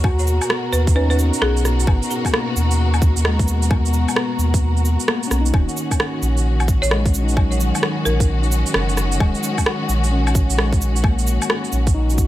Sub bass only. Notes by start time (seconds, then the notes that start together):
Already playing: D#2
0.73 D#2
1.42 B1
1.88 G#1
2.56 D#2
3.17 D#2
4.39 D#2
5.31 B1
5.54 D#1
6.22 A#1
6.83 A#1
8.06 A#1
8.75 F#1
9.21 D#1
9.89 A#1
10.50 A#1
11.73 A#1